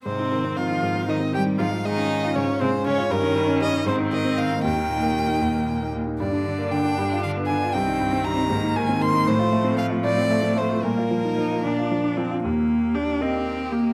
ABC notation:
X:1
M:6/8
L:1/16
Q:3/8=78
K:Ab
V:1 name="Violin"
c4 f4 e2 g2 | f2 e4 d2 c2 d2 | B4 e2 c2 e2 f2 | g8- g2 z2 |
[K:Eb] d4 g4 f2 a2 | g4 b4 a2 c'2 | c4 f2 d4 c2 | B8- B2 z2 |
z6 G6 |]
V:2 name="Viola"
C4 F4 E2 G2 | F2 E4 D2 C2 D2 | D6 C6 | B,8- B,2 z2 |
[K:Eb] D12 | C6 B,6 | =A,6 A,6 | B,6 D4 z2 |
z4 G2 z4 G2 |]
V:3 name="Grand piano"
A,, E E, C E, E A,, C E, C E, E | A,, F A, D A, F A,, D A, D A, F | G,, E G, D G, E A,, E E, C E, E | E,, E B,, B, B,, E E,, B, B,, B, B,, E |
[K:Eb] G,, D D, B, D, D G,, F D, =B, D, F | C,, E G,, C G,, E A,, E E, C E, E | =A,, F =A, C A, F A,, C A, C A, F | B,, F F, E F, F B,, F F, D F, F |
E,,6 [B,Ge]6 |]
V:4 name="Cello" clef=bass
C,4 F,4 E,2 G,2 | F,2 E,4 D,2 C,2 D,2 | E,6 E,6 | E,8- E,2 z2 |
[K:Eb] D,6 D,6 | E,12 | F,12 | G,4 E2 D4 C2 |
B,4 D2 C4 B,2 |]